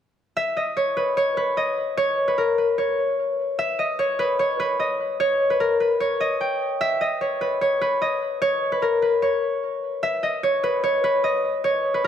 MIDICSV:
0, 0, Header, 1, 2, 480
1, 0, Start_track
1, 0, Tempo, 402685
1, 436, Time_signature, 4, 2, 24, 8
1, 14392, End_track
2, 0, Start_track
2, 0, Title_t, "Harp"
2, 0, Program_c, 0, 46
2, 436, Note_on_c, 0, 76, 99
2, 675, Note_on_c, 0, 75, 72
2, 747, Note_off_c, 0, 76, 0
2, 913, Note_on_c, 0, 73, 74
2, 1153, Note_on_c, 0, 71, 75
2, 1389, Note_off_c, 0, 73, 0
2, 1394, Note_on_c, 0, 73, 85
2, 1629, Note_off_c, 0, 71, 0
2, 1634, Note_on_c, 0, 71, 78
2, 1868, Note_off_c, 0, 75, 0
2, 1873, Note_on_c, 0, 75, 73
2, 2349, Note_off_c, 0, 73, 0
2, 2354, Note_on_c, 0, 73, 110
2, 2710, Note_off_c, 0, 71, 0
2, 2715, Note_on_c, 0, 71, 70
2, 2836, Note_on_c, 0, 70, 76
2, 2907, Note_off_c, 0, 71, 0
2, 3077, Note_on_c, 0, 71, 64
2, 3148, Note_off_c, 0, 70, 0
2, 3310, Note_off_c, 0, 73, 0
2, 3315, Note_on_c, 0, 73, 84
2, 3999, Note_off_c, 0, 75, 0
2, 4276, Note_on_c, 0, 76, 110
2, 4517, Note_on_c, 0, 75, 75
2, 4588, Note_off_c, 0, 76, 0
2, 4750, Note_off_c, 0, 73, 0
2, 4755, Note_on_c, 0, 73, 82
2, 4991, Note_off_c, 0, 71, 0
2, 4995, Note_on_c, 0, 71, 84
2, 5231, Note_off_c, 0, 73, 0
2, 5236, Note_on_c, 0, 73, 85
2, 5474, Note_off_c, 0, 71, 0
2, 5478, Note_on_c, 0, 71, 85
2, 5711, Note_off_c, 0, 75, 0
2, 5716, Note_on_c, 0, 75, 70
2, 6193, Note_off_c, 0, 73, 0
2, 6198, Note_on_c, 0, 73, 89
2, 6553, Note_off_c, 0, 71, 0
2, 6558, Note_on_c, 0, 71, 70
2, 6677, Note_on_c, 0, 70, 80
2, 6749, Note_off_c, 0, 71, 0
2, 6917, Note_on_c, 0, 71, 76
2, 6989, Note_off_c, 0, 70, 0
2, 7152, Note_off_c, 0, 73, 0
2, 7157, Note_on_c, 0, 73, 93
2, 7391, Note_off_c, 0, 75, 0
2, 7396, Note_on_c, 0, 75, 86
2, 7637, Note_on_c, 0, 79, 76
2, 8115, Note_on_c, 0, 76, 99
2, 8186, Note_off_c, 0, 75, 0
2, 8355, Note_on_c, 0, 75, 76
2, 8426, Note_off_c, 0, 76, 0
2, 8590, Note_off_c, 0, 73, 0
2, 8594, Note_on_c, 0, 73, 73
2, 8829, Note_off_c, 0, 71, 0
2, 8834, Note_on_c, 0, 71, 73
2, 9070, Note_off_c, 0, 73, 0
2, 9075, Note_on_c, 0, 73, 80
2, 9310, Note_off_c, 0, 71, 0
2, 9315, Note_on_c, 0, 71, 79
2, 9488, Note_off_c, 0, 79, 0
2, 9550, Note_off_c, 0, 75, 0
2, 9555, Note_on_c, 0, 75, 76
2, 10027, Note_off_c, 0, 73, 0
2, 10032, Note_on_c, 0, 73, 104
2, 10390, Note_off_c, 0, 71, 0
2, 10395, Note_on_c, 0, 71, 73
2, 10515, Note_on_c, 0, 70, 76
2, 10586, Note_off_c, 0, 71, 0
2, 10755, Note_on_c, 0, 71, 65
2, 10826, Note_off_c, 0, 70, 0
2, 10989, Note_off_c, 0, 73, 0
2, 10994, Note_on_c, 0, 73, 86
2, 11681, Note_off_c, 0, 75, 0
2, 11954, Note_on_c, 0, 76, 106
2, 12194, Note_on_c, 0, 75, 77
2, 12266, Note_off_c, 0, 76, 0
2, 12432, Note_off_c, 0, 73, 0
2, 12436, Note_on_c, 0, 73, 81
2, 12672, Note_off_c, 0, 71, 0
2, 12677, Note_on_c, 0, 71, 90
2, 12911, Note_off_c, 0, 73, 0
2, 12916, Note_on_c, 0, 73, 83
2, 13153, Note_off_c, 0, 71, 0
2, 13158, Note_on_c, 0, 71, 85
2, 13391, Note_off_c, 0, 75, 0
2, 13396, Note_on_c, 0, 75, 73
2, 13872, Note_off_c, 0, 73, 0
2, 13877, Note_on_c, 0, 73, 91
2, 14230, Note_off_c, 0, 71, 0
2, 14235, Note_on_c, 0, 71, 68
2, 14356, Note_on_c, 0, 70, 82
2, 14392, Note_off_c, 0, 70, 0
2, 14392, Note_off_c, 0, 71, 0
2, 14392, Note_off_c, 0, 73, 0
2, 14392, Note_off_c, 0, 75, 0
2, 14392, End_track
0, 0, End_of_file